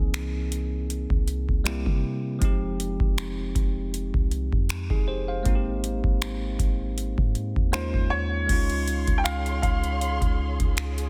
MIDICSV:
0, 0, Header, 1, 6, 480
1, 0, Start_track
1, 0, Tempo, 759494
1, 1528, Time_signature, 4, 2, 24, 8
1, 7011, End_track
2, 0, Start_track
2, 0, Title_t, "Grand piano"
2, 0, Program_c, 0, 0
2, 4885, Note_on_c, 0, 72, 80
2, 5120, Note_on_c, 0, 73, 103
2, 5133, Note_off_c, 0, 72, 0
2, 5801, Note_on_c, 0, 79, 79
2, 5824, Note_off_c, 0, 73, 0
2, 5840, Note_on_c, 0, 77, 103
2, 5844, Note_off_c, 0, 79, 0
2, 6072, Note_off_c, 0, 77, 0
2, 6082, Note_on_c, 0, 77, 92
2, 6539, Note_off_c, 0, 77, 0
2, 7011, End_track
3, 0, Start_track
3, 0, Title_t, "String section"
3, 0, Program_c, 1, 48
3, 5367, Note_on_c, 1, 73, 64
3, 5368, Note_on_c, 1, 68, 70
3, 5368, Note_on_c, 1, 77, 65
3, 5368, Note_on_c, 1, 84, 77
3, 7011, Note_off_c, 1, 68, 0
3, 7011, Note_off_c, 1, 73, 0
3, 7011, Note_off_c, 1, 77, 0
3, 7011, Note_off_c, 1, 84, 0
3, 7011, End_track
4, 0, Start_track
4, 0, Title_t, "Tine electric piano"
4, 0, Program_c, 2, 4
4, 0, Control_c, 2, 64, 127
4, 0, Note_on_c, 2, 52, 69
4, 0, Note_on_c, 2, 58, 66
4, 0, Note_on_c, 2, 60, 66
4, 0, Note_on_c, 2, 63, 67
4, 0, Note_on_c, 2, 68, 78
4, 1013, Note_off_c, 2, 52, 0
4, 1017, Note_off_c, 2, 58, 0
4, 1022, Note_off_c, 2, 60, 0
4, 1026, Note_off_c, 2, 63, 0
4, 1031, Note_off_c, 2, 68, 0
4, 1038, Note_on_c, 2, 55, 73
4, 1043, Note_on_c, 2, 58, 65
4, 1048, Note_on_c, 2, 60, 65
4, 1052, Note_on_c, 2, 64, 65
4, 1055, Control_c, 2, 64, 0
4, 1057, Note_on_c, 2, 67, 79
4, 1173, Control_c, 2, 64, 127
4, 1510, Note_on_c, 2, 53, 68
4, 1518, Note_on_c, 2, 56, 65
4, 1519, Note_off_c, 2, 60, 0
4, 1523, Note_off_c, 2, 55, 0
4, 1525, Note_off_c, 2, 58, 0
4, 1527, Note_on_c, 2, 60, 59
4, 1530, Note_off_c, 2, 64, 0
4, 1532, Note_off_c, 2, 67, 0
4, 1534, Control_c, 2, 64, 0
4, 1537, Note_on_c, 2, 63, 65
4, 1546, Note_on_c, 2, 67, 78
4, 1635, Control_c, 2, 64, 127
4, 2708, Note_off_c, 2, 63, 0
4, 2713, Note_off_c, 2, 67, 0
4, 3099, Note_on_c, 2, 68, 60
4, 3102, Note_on_c, 2, 63, 52
4, 3203, Note_off_c, 2, 68, 0
4, 3204, Note_off_c, 2, 63, 0
4, 3209, Note_on_c, 2, 72, 70
4, 3212, Note_on_c, 2, 67, 59
4, 3331, Note_off_c, 2, 72, 0
4, 3333, Note_off_c, 2, 67, 0
4, 3339, Note_on_c, 2, 77, 66
4, 3342, Note_on_c, 2, 72, 53
4, 3413, Note_off_c, 2, 53, 0
4, 3417, Note_off_c, 2, 56, 0
4, 3422, Note_off_c, 2, 60, 0
4, 3431, Note_on_c, 2, 56, 69
4, 3441, Note_on_c, 2, 58, 65
4, 3451, Note_on_c, 2, 60, 62
4, 3457, Control_c, 2, 64, 0
4, 3459, Note_on_c, 2, 63, 63
4, 3468, Note_on_c, 2, 66, 61
4, 3502, Note_off_c, 2, 66, 0
4, 3509, Note_on_c, 2, 67, 74
4, 3566, Note_off_c, 2, 77, 0
4, 3568, Note_off_c, 2, 72, 0
4, 3568, Control_c, 2, 64, 127
4, 4854, Note_off_c, 2, 56, 0
4, 4859, Note_off_c, 2, 58, 0
4, 4864, Note_off_c, 2, 60, 0
4, 4868, Note_off_c, 2, 63, 0
4, 4880, Note_on_c, 2, 56, 72
4, 4884, Note_on_c, 2, 58, 64
4, 4888, Note_on_c, 2, 61, 61
4, 4893, Note_off_c, 2, 67, 0
4, 4894, Note_on_c, 2, 63, 61
4, 4895, Control_c, 2, 64, 0
4, 4898, Note_on_c, 2, 65, 76
4, 5013, Control_c, 2, 64, 127
4, 5342, Note_off_c, 2, 56, 0
4, 5349, Note_on_c, 2, 56, 60
4, 5361, Note_off_c, 2, 61, 0
4, 5366, Note_off_c, 2, 58, 0
4, 5369, Note_on_c, 2, 61, 55
4, 5371, Note_off_c, 2, 63, 0
4, 5373, Note_off_c, 2, 65, 0
4, 5377, Control_c, 2, 64, 0
4, 5378, Note_on_c, 2, 63, 55
4, 5386, Note_on_c, 2, 65, 70
4, 5480, Control_c, 2, 64, 127
4, 7011, Note_off_c, 2, 56, 0
4, 7011, Note_off_c, 2, 61, 0
4, 7011, Note_off_c, 2, 63, 0
4, 7011, Note_off_c, 2, 65, 0
4, 7011, End_track
5, 0, Start_track
5, 0, Title_t, "808-style bass"
5, 0, Program_c, 3, 38
5, 0, Note_on_c, 3, 36, 102
5, 671, Note_off_c, 3, 36, 0
5, 696, Note_on_c, 3, 36, 104
5, 927, Note_off_c, 3, 36, 0
5, 940, Note_on_c, 3, 36, 96
5, 1169, Note_off_c, 3, 36, 0
5, 1177, Note_on_c, 3, 48, 95
5, 1514, Note_off_c, 3, 48, 0
5, 1528, Note_on_c, 3, 29, 107
5, 1882, Note_off_c, 3, 29, 0
5, 1896, Note_on_c, 3, 29, 98
5, 2233, Note_off_c, 3, 29, 0
5, 2246, Note_on_c, 3, 29, 94
5, 2601, Note_off_c, 3, 29, 0
5, 2617, Note_on_c, 3, 36, 100
5, 2847, Note_off_c, 3, 36, 0
5, 2860, Note_on_c, 3, 41, 99
5, 3089, Note_off_c, 3, 41, 0
5, 3097, Note_on_c, 3, 29, 97
5, 3433, Note_off_c, 3, 29, 0
5, 3448, Note_on_c, 3, 32, 107
5, 3803, Note_off_c, 3, 32, 0
5, 3817, Note_on_c, 3, 32, 105
5, 4153, Note_off_c, 3, 32, 0
5, 4167, Note_on_c, 3, 32, 95
5, 4522, Note_off_c, 3, 32, 0
5, 4537, Note_on_c, 3, 44, 104
5, 4767, Note_off_c, 3, 44, 0
5, 4780, Note_on_c, 3, 39, 97
5, 5009, Note_off_c, 3, 39, 0
5, 5018, Note_on_c, 3, 39, 99
5, 5354, Note_off_c, 3, 39, 0
5, 5368, Note_on_c, 3, 37, 109
5, 5722, Note_off_c, 3, 37, 0
5, 5736, Note_on_c, 3, 37, 106
5, 6073, Note_off_c, 3, 37, 0
5, 6086, Note_on_c, 3, 37, 97
5, 6441, Note_off_c, 3, 37, 0
5, 6456, Note_on_c, 3, 37, 103
5, 6687, Note_off_c, 3, 37, 0
5, 6699, Note_on_c, 3, 37, 99
5, 7011, Note_off_c, 3, 37, 0
5, 7011, End_track
6, 0, Start_track
6, 0, Title_t, "Drums"
6, 87, Note_on_c, 9, 42, 65
6, 90, Note_on_c, 9, 26, 107
6, 151, Note_off_c, 9, 42, 0
6, 153, Note_off_c, 9, 26, 0
6, 328, Note_on_c, 9, 42, 67
6, 391, Note_off_c, 9, 42, 0
6, 569, Note_on_c, 9, 42, 68
6, 632, Note_off_c, 9, 42, 0
6, 696, Note_on_c, 9, 36, 93
6, 760, Note_off_c, 9, 36, 0
6, 806, Note_on_c, 9, 42, 52
6, 869, Note_off_c, 9, 42, 0
6, 940, Note_on_c, 9, 36, 84
6, 1003, Note_off_c, 9, 36, 0
6, 1046, Note_on_c, 9, 42, 60
6, 1052, Note_on_c, 9, 26, 120
6, 1109, Note_off_c, 9, 42, 0
6, 1115, Note_off_c, 9, 26, 0
6, 1177, Note_on_c, 9, 36, 92
6, 1240, Note_off_c, 9, 36, 0
6, 1527, Note_on_c, 9, 36, 110
6, 1527, Note_on_c, 9, 42, 68
6, 1590, Note_off_c, 9, 42, 0
6, 1591, Note_off_c, 9, 36, 0
6, 1769, Note_on_c, 9, 42, 65
6, 1832, Note_off_c, 9, 42, 0
6, 1896, Note_on_c, 9, 36, 93
6, 1960, Note_off_c, 9, 36, 0
6, 2009, Note_on_c, 9, 42, 66
6, 2011, Note_on_c, 9, 26, 106
6, 2072, Note_off_c, 9, 42, 0
6, 2074, Note_off_c, 9, 26, 0
6, 2246, Note_on_c, 9, 36, 88
6, 2248, Note_on_c, 9, 42, 65
6, 2309, Note_off_c, 9, 36, 0
6, 2311, Note_off_c, 9, 42, 0
6, 2489, Note_on_c, 9, 42, 66
6, 2553, Note_off_c, 9, 42, 0
6, 2617, Note_on_c, 9, 36, 94
6, 2680, Note_off_c, 9, 36, 0
6, 2727, Note_on_c, 9, 42, 50
6, 2790, Note_off_c, 9, 42, 0
6, 2860, Note_on_c, 9, 36, 87
6, 2923, Note_off_c, 9, 36, 0
6, 2966, Note_on_c, 9, 42, 59
6, 2972, Note_on_c, 9, 26, 119
6, 3029, Note_off_c, 9, 42, 0
6, 3035, Note_off_c, 9, 26, 0
6, 3097, Note_on_c, 9, 36, 87
6, 3161, Note_off_c, 9, 36, 0
6, 3447, Note_on_c, 9, 42, 63
6, 3448, Note_on_c, 9, 36, 108
6, 3511, Note_off_c, 9, 36, 0
6, 3511, Note_off_c, 9, 42, 0
6, 3690, Note_on_c, 9, 42, 68
6, 3753, Note_off_c, 9, 42, 0
6, 3817, Note_on_c, 9, 36, 95
6, 3880, Note_off_c, 9, 36, 0
6, 3929, Note_on_c, 9, 42, 64
6, 3931, Note_on_c, 9, 26, 108
6, 3992, Note_off_c, 9, 42, 0
6, 3994, Note_off_c, 9, 26, 0
6, 4166, Note_on_c, 9, 36, 94
6, 4168, Note_on_c, 9, 42, 67
6, 4229, Note_off_c, 9, 36, 0
6, 4232, Note_off_c, 9, 42, 0
6, 4409, Note_on_c, 9, 42, 64
6, 4473, Note_off_c, 9, 42, 0
6, 4537, Note_on_c, 9, 36, 96
6, 4600, Note_off_c, 9, 36, 0
6, 4646, Note_on_c, 9, 42, 51
6, 4709, Note_off_c, 9, 42, 0
6, 4780, Note_on_c, 9, 36, 86
6, 4843, Note_off_c, 9, 36, 0
6, 4886, Note_on_c, 9, 42, 58
6, 4892, Note_on_c, 9, 26, 120
6, 4949, Note_off_c, 9, 42, 0
6, 4955, Note_off_c, 9, 26, 0
6, 5018, Note_on_c, 9, 36, 90
6, 5081, Note_off_c, 9, 36, 0
6, 5367, Note_on_c, 9, 42, 62
6, 5368, Note_on_c, 9, 36, 106
6, 5368, Note_on_c, 9, 49, 89
6, 5430, Note_off_c, 9, 42, 0
6, 5431, Note_off_c, 9, 36, 0
6, 5431, Note_off_c, 9, 49, 0
6, 5496, Note_on_c, 9, 42, 54
6, 5559, Note_off_c, 9, 42, 0
6, 5609, Note_on_c, 9, 42, 70
6, 5672, Note_off_c, 9, 42, 0
6, 5735, Note_on_c, 9, 42, 53
6, 5736, Note_on_c, 9, 36, 91
6, 5798, Note_off_c, 9, 42, 0
6, 5800, Note_off_c, 9, 36, 0
6, 5849, Note_on_c, 9, 42, 68
6, 5851, Note_on_c, 9, 26, 105
6, 5912, Note_off_c, 9, 42, 0
6, 5914, Note_off_c, 9, 26, 0
6, 5979, Note_on_c, 9, 42, 36
6, 6042, Note_off_c, 9, 42, 0
6, 6086, Note_on_c, 9, 36, 91
6, 6088, Note_on_c, 9, 42, 65
6, 6149, Note_off_c, 9, 36, 0
6, 6151, Note_off_c, 9, 42, 0
6, 6216, Note_on_c, 9, 42, 45
6, 6280, Note_off_c, 9, 42, 0
6, 6329, Note_on_c, 9, 42, 62
6, 6392, Note_off_c, 9, 42, 0
6, 6457, Note_on_c, 9, 36, 94
6, 6458, Note_on_c, 9, 42, 46
6, 6520, Note_off_c, 9, 36, 0
6, 6522, Note_off_c, 9, 42, 0
6, 6699, Note_on_c, 9, 36, 83
6, 6699, Note_on_c, 9, 42, 54
6, 6762, Note_off_c, 9, 42, 0
6, 6763, Note_off_c, 9, 36, 0
6, 6806, Note_on_c, 9, 42, 59
6, 6812, Note_on_c, 9, 26, 125
6, 6869, Note_off_c, 9, 42, 0
6, 6875, Note_off_c, 9, 26, 0
6, 6939, Note_on_c, 9, 42, 42
6, 7002, Note_off_c, 9, 42, 0
6, 7011, End_track
0, 0, End_of_file